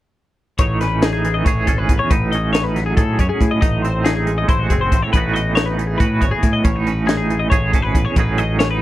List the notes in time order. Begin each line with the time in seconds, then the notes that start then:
0.59 A1 A2 D#4 C#5, kick, closed hi-hat
0.81 C#4 B4, snare, closed hi-hat
1.02 D#4 G#4, snare, closed hi-hat
1.13 G#4
1.25 E3, closed hi-hat
1.34 D#5
1.45 A1 G#4 C#5, kick, closed hi-hat
1.67 G#1 C#4 A4, kick, closed hi-hat
1.78 B4
1.89 A1 E2, kick, closed hi-hat
1.99 C#5
2.10 A1 A2 D#4 B4, kick, closed hi-hat
2.32 C#4 D#5, closed hi-hat
2.53 D#4 C#5, snare, closed hi-hat
2.64 B4
2.76 F#3, snare, closed hi-hat
2.86 G#4
2.97 A2 G#4 A4, kick, closed hi-hat
3.19 F#2 C#4 C#5, kick, closed hi-hat
3.29 G#4
3.41 A2, kick, closed hi-hat
3.51 D#5
3.61 A1 A2 D#4 D#5, kick, closed hi-hat
3.82 C4 C5, closed hi-hat
4.04 D#4 G#4, snare, closed hi-hat
4.16 G#4
4.27 G#3, closed hi-hat
4.38 D#5
4.48 A1 E4 C5, kick, closed hi-hat
4.59 F#4
4.70 F#1 C4 G#4, kick, closed hi-hat
4.81 C5
4.92 A1 A2, kick, closed hi-hat
5.03 C#5
5.13 A1 A2 E3 B3 D#4 B4, kick, closed hi-hat
5.18 F#4
5.34 B3 D#5, closed hi-hat
5.55 D#4 C#5, snare, closed hi-hat
5.66 B4
5.78 E3, closed hi-hat
5.87 G#4
5.98 A2 F#4 B4, kick, closed hi-hat
6.21 G#1 B3 C#5, kick, closed hi-hat
6.31 G#4
6.43 A2, kick, closed hi-hat
6.53 D#5
6.64 A1 A2 C#4 C#5, kick, closed hi-hat
6.76 D#4
6.86 C#4 B4, closed hi-hat
7.07 D#4 G#4, snare, closed hi-hat
7.17 G#4
7.30 E3, closed hi-hat
7.39 D#5
7.50 A1 G#4 C#5, kick, closed hi-hat
7.72 G#1 C#4 A4, kick, closed hi-hat
7.82 B4
7.95 A1 E2, kick, closed hi-hat
8.05 C#5
8.16 A1 A2 F#3 C#4 D#4 G#4 B4, kick, closed hi-hat
8.38 C#4 D#5, closed hi-hat
8.59 C#4 C#5, snare, closed hi-hat
8.71 D#4 B4